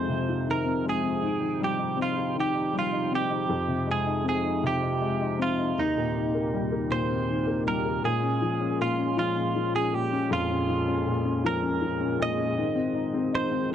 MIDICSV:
0, 0, Header, 1, 4, 480
1, 0, Start_track
1, 0, Tempo, 756620
1, 783, Time_signature, 6, 3, 24, 8
1, 8721, End_track
2, 0, Start_track
2, 0, Title_t, "Clean electric guitar"
2, 0, Program_c, 0, 27
2, 0, Note_on_c, 0, 72, 68
2, 320, Note_off_c, 0, 72, 0
2, 322, Note_on_c, 0, 70, 66
2, 537, Note_off_c, 0, 70, 0
2, 567, Note_on_c, 0, 68, 70
2, 1039, Note_off_c, 0, 68, 0
2, 1042, Note_on_c, 0, 67, 56
2, 1256, Note_off_c, 0, 67, 0
2, 1283, Note_on_c, 0, 65, 60
2, 1497, Note_off_c, 0, 65, 0
2, 1525, Note_on_c, 0, 67, 63
2, 1761, Note_off_c, 0, 67, 0
2, 1768, Note_on_c, 0, 65, 62
2, 1998, Note_off_c, 0, 65, 0
2, 2000, Note_on_c, 0, 67, 66
2, 2481, Note_off_c, 0, 67, 0
2, 2483, Note_on_c, 0, 68, 63
2, 2697, Note_off_c, 0, 68, 0
2, 2721, Note_on_c, 0, 68, 66
2, 2958, Note_off_c, 0, 68, 0
2, 2960, Note_on_c, 0, 67, 68
2, 3437, Note_off_c, 0, 67, 0
2, 3440, Note_on_c, 0, 65, 63
2, 3676, Note_on_c, 0, 63, 54
2, 3678, Note_off_c, 0, 65, 0
2, 4389, Note_on_c, 0, 72, 73
2, 4604, Note_off_c, 0, 63, 0
2, 4840, Note_off_c, 0, 72, 0
2, 4871, Note_on_c, 0, 70, 68
2, 5090, Note_off_c, 0, 70, 0
2, 5108, Note_on_c, 0, 68, 73
2, 5591, Note_off_c, 0, 68, 0
2, 5593, Note_on_c, 0, 65, 67
2, 5823, Note_off_c, 0, 65, 0
2, 5830, Note_on_c, 0, 65, 75
2, 6187, Note_off_c, 0, 65, 0
2, 6190, Note_on_c, 0, 68, 72
2, 6308, Note_off_c, 0, 68, 0
2, 6308, Note_on_c, 0, 67, 76
2, 6550, Note_off_c, 0, 67, 0
2, 6553, Note_on_c, 0, 65, 72
2, 7270, Note_off_c, 0, 65, 0
2, 7273, Note_on_c, 0, 70, 85
2, 7753, Note_off_c, 0, 70, 0
2, 7755, Note_on_c, 0, 75, 91
2, 8468, Note_off_c, 0, 75, 0
2, 8470, Note_on_c, 0, 72, 79
2, 8688, Note_off_c, 0, 72, 0
2, 8721, End_track
3, 0, Start_track
3, 0, Title_t, "Tonewheel organ"
3, 0, Program_c, 1, 16
3, 0, Note_on_c, 1, 48, 50
3, 0, Note_on_c, 1, 53, 45
3, 0, Note_on_c, 1, 63, 44
3, 0, Note_on_c, 1, 65, 57
3, 769, Note_off_c, 1, 65, 0
3, 780, Note_on_c, 1, 79, 55
3, 2198, Note_off_c, 1, 48, 0
3, 2207, Note_off_c, 1, 79, 0
3, 2218, Note_on_c, 1, 65, 57
3, 2220, Note_on_c, 1, 48, 52
3, 3638, Note_off_c, 1, 53, 0
3, 3646, Note_off_c, 1, 65, 0
3, 3647, Note_off_c, 1, 48, 0
3, 3664, Note_on_c, 1, 39, 50
3, 3664, Note_on_c, 1, 48, 45
3, 3667, Note_on_c, 1, 67, 56
3, 3669, Note_on_c, 1, 58, 44
3, 5077, Note_off_c, 1, 63, 0
3, 5088, Note_off_c, 1, 39, 0
3, 5088, Note_off_c, 1, 48, 0
3, 5090, Note_off_c, 1, 67, 0
3, 5091, Note_off_c, 1, 58, 0
3, 5105, Note_on_c, 1, 56, 50
3, 5105, Note_on_c, 1, 61, 48
3, 5106, Note_on_c, 1, 65, 61
3, 5107, Note_on_c, 1, 46, 53
3, 7955, Note_off_c, 1, 61, 0
3, 7956, Note_off_c, 1, 46, 0
3, 7977, Note_on_c, 1, 60, 51
3, 7982, Note_on_c, 1, 51, 57
3, 8721, Note_off_c, 1, 51, 0
3, 8721, Note_off_c, 1, 56, 0
3, 8721, Note_off_c, 1, 60, 0
3, 8721, Note_off_c, 1, 65, 0
3, 8721, End_track
4, 0, Start_track
4, 0, Title_t, "Upright piano"
4, 0, Program_c, 2, 0
4, 0, Control_c, 2, 64, 127
4, 0, Note_on_c, 2, 41, 48
4, 0, Note_on_c, 2, 48, 38
4, 0, Note_on_c, 2, 51, 41
4, 0, Note_on_c, 2, 56, 42
4, 0, Note_on_c, 2, 60, 42
4, 58, Note_off_c, 2, 48, 0
4, 58, Note_on_c, 2, 48, 49
4, 185, Note_on_c, 2, 65, 36
4, 292, Note_off_c, 2, 51, 0
4, 301, Note_on_c, 2, 51, 42
4, 406, Note_off_c, 2, 60, 0
4, 415, Note_on_c, 2, 60, 42
4, 528, Note_off_c, 2, 56, 0
4, 538, Note_on_c, 2, 56, 45
4, 647, Note_off_c, 2, 60, 0
4, 657, Note_on_c, 2, 60, 41
4, 756, Note_off_c, 2, 41, 0
4, 759, Note_off_c, 2, 48, 0
4, 766, Note_off_c, 2, 65, 0
4, 768, Note_off_c, 2, 51, 0
4, 773, Note_off_c, 2, 56, 0
4, 775, Note_on_c, 2, 44, 49
4, 776, Note_off_c, 2, 60, 0
4, 790, Control_c, 2, 64, 0
4, 894, Note_on_c, 2, 51, 37
4, 901, Control_c, 2, 64, 127
4, 1018, Note_on_c, 2, 55, 41
4, 1133, Note_on_c, 2, 63, 39
4, 1248, Note_on_c, 2, 60, 43
4, 1366, Note_off_c, 2, 63, 0
4, 1376, Note_on_c, 2, 63, 41
4, 1486, Note_off_c, 2, 51, 0
4, 1496, Note_on_c, 2, 51, 51
4, 1603, Note_off_c, 2, 63, 0
4, 1612, Note_on_c, 2, 63, 37
4, 1724, Note_off_c, 2, 55, 0
4, 1733, Note_on_c, 2, 55, 41
4, 1849, Note_off_c, 2, 63, 0
4, 1858, Note_on_c, 2, 63, 45
4, 1970, Note_off_c, 2, 60, 0
4, 1979, Note_on_c, 2, 60, 44
4, 2086, Note_off_c, 2, 63, 0
4, 2096, Note_on_c, 2, 63, 41
4, 2194, Note_off_c, 2, 44, 0
4, 2198, Note_off_c, 2, 51, 0
4, 2204, Note_off_c, 2, 55, 0
4, 2214, Note_off_c, 2, 60, 0
4, 2216, Note_off_c, 2, 63, 0
4, 2216, Note_on_c, 2, 41, 49
4, 2232, Control_c, 2, 64, 0
4, 2336, Note_on_c, 2, 48, 39
4, 2355, Control_c, 2, 64, 127
4, 2455, Note_on_c, 2, 56, 40
4, 2577, Note_on_c, 2, 63, 43
4, 2694, Note_on_c, 2, 60, 40
4, 2806, Note_off_c, 2, 63, 0
4, 2816, Note_on_c, 2, 63, 43
4, 2932, Note_off_c, 2, 48, 0
4, 2941, Note_on_c, 2, 48, 56
4, 3052, Note_off_c, 2, 63, 0
4, 3062, Note_on_c, 2, 63, 37
4, 3171, Note_off_c, 2, 56, 0
4, 3181, Note_on_c, 2, 56, 44
4, 3295, Note_off_c, 2, 63, 0
4, 3305, Note_on_c, 2, 63, 45
4, 3411, Note_off_c, 2, 60, 0
4, 3420, Note_on_c, 2, 60, 42
4, 3538, Note_off_c, 2, 63, 0
4, 3547, Note_on_c, 2, 63, 43
4, 3634, Note_off_c, 2, 41, 0
4, 3640, Note_off_c, 2, 48, 0
4, 3647, Note_off_c, 2, 56, 0
4, 3654, Note_off_c, 2, 60, 0
4, 3662, Note_off_c, 2, 63, 0
4, 3664, Note_on_c, 2, 39, 49
4, 3672, Control_c, 2, 64, 0
4, 3785, Note_on_c, 2, 46, 39
4, 3798, Control_c, 2, 64, 127
4, 3906, Note_on_c, 2, 51, 42
4, 4026, Note_on_c, 2, 58, 40
4, 4145, Note_on_c, 2, 55, 40
4, 4253, Note_off_c, 2, 58, 0
4, 4262, Note_on_c, 2, 58, 43
4, 4371, Note_off_c, 2, 46, 0
4, 4381, Note_on_c, 2, 46, 52
4, 4503, Note_on_c, 2, 60, 36
4, 4610, Note_off_c, 2, 51, 0
4, 4619, Note_on_c, 2, 51, 42
4, 4730, Note_off_c, 2, 58, 0
4, 4740, Note_on_c, 2, 58, 44
4, 4848, Note_off_c, 2, 55, 0
4, 4857, Note_on_c, 2, 55, 42
4, 4973, Note_off_c, 2, 58, 0
4, 4983, Note_on_c, 2, 58, 41
4, 5077, Note_off_c, 2, 39, 0
4, 5080, Note_off_c, 2, 46, 0
4, 5084, Note_off_c, 2, 60, 0
4, 5086, Note_off_c, 2, 51, 0
4, 5092, Note_off_c, 2, 55, 0
4, 5099, Note_off_c, 2, 58, 0
4, 5099, Note_on_c, 2, 46, 50
4, 5109, Control_c, 2, 64, 0
4, 5222, Note_on_c, 2, 61, 42
4, 5232, Control_c, 2, 64, 127
4, 5342, Note_on_c, 2, 53, 45
4, 5448, Note_off_c, 2, 61, 0
4, 5458, Note_on_c, 2, 61, 43
4, 5576, Note_off_c, 2, 46, 0
4, 5585, Note_on_c, 2, 46, 46
4, 5694, Note_off_c, 2, 61, 0
4, 5703, Note_on_c, 2, 61, 42
4, 5809, Note_off_c, 2, 53, 0
4, 5819, Note_on_c, 2, 53, 55
4, 5930, Note_off_c, 2, 61, 0
4, 5940, Note_on_c, 2, 61, 42
4, 6056, Note_off_c, 2, 53, 0
4, 6065, Note_on_c, 2, 53, 43
4, 6175, Note_off_c, 2, 61, 0
4, 6185, Note_on_c, 2, 61, 45
4, 6288, Note_off_c, 2, 46, 0
4, 6298, Note_on_c, 2, 46, 44
4, 6415, Note_off_c, 2, 61, 0
4, 6424, Note_on_c, 2, 61, 43
4, 6538, Note_on_c, 2, 41, 54
4, 6652, Note_off_c, 2, 61, 0
4, 6661, Note_on_c, 2, 61, 45
4, 6770, Note_off_c, 2, 53, 0
4, 6779, Note_on_c, 2, 53, 47
4, 6893, Note_off_c, 2, 61, 0
4, 6903, Note_on_c, 2, 61, 43
4, 7010, Note_off_c, 2, 46, 0
4, 7020, Note_on_c, 2, 46, 48
4, 7126, Note_off_c, 2, 61, 0
4, 7135, Note_on_c, 2, 61, 43
4, 7251, Note_off_c, 2, 53, 0
4, 7261, Note_on_c, 2, 53, 58
4, 7369, Note_off_c, 2, 61, 0
4, 7378, Note_on_c, 2, 61, 43
4, 7486, Note_off_c, 2, 53, 0
4, 7496, Note_on_c, 2, 53, 48
4, 7607, Note_off_c, 2, 61, 0
4, 7616, Note_on_c, 2, 61, 43
4, 7726, Note_off_c, 2, 46, 0
4, 7735, Note_on_c, 2, 46, 52
4, 7841, Note_off_c, 2, 61, 0
4, 7850, Note_on_c, 2, 61, 42
4, 7952, Note_off_c, 2, 41, 0
4, 7963, Note_off_c, 2, 53, 0
4, 7970, Note_off_c, 2, 46, 0
4, 7971, Note_off_c, 2, 61, 0
4, 7972, Note_on_c, 2, 44, 57
4, 7988, Control_c, 2, 64, 0
4, 8081, Control_c, 2, 64, 127
4, 8093, Note_on_c, 2, 60, 42
4, 8213, Note_on_c, 2, 63, 48
4, 8328, Note_off_c, 2, 60, 0
4, 8337, Note_on_c, 2, 60, 46
4, 8445, Note_off_c, 2, 63, 0
4, 8455, Note_on_c, 2, 63, 46
4, 8564, Note_off_c, 2, 60, 0
4, 8574, Note_on_c, 2, 60, 48
4, 8694, Note_on_c, 2, 51, 60
4, 8721, Note_off_c, 2, 44, 0
4, 8721, Note_off_c, 2, 51, 0
4, 8721, Note_off_c, 2, 60, 0
4, 8721, Note_off_c, 2, 63, 0
4, 8721, End_track
0, 0, End_of_file